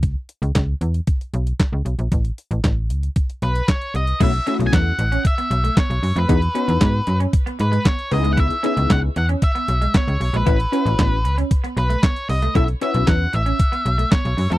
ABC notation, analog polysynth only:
X:1
M:4/4
L:1/8
Q:1/4=115
K:Bmix
V:1 name="Analog polysynth"
z8 | z8 | [A,CEF] [A,CEF]2 z4 z | [B,DFG] [B,DFB]2 z4 [B,DEG]- |
[B,DEG] [B,DEG]2 z4 z | [CEFB] [CEFB]2 z4 z | [CEFA] [CEFB]2 z4 z |]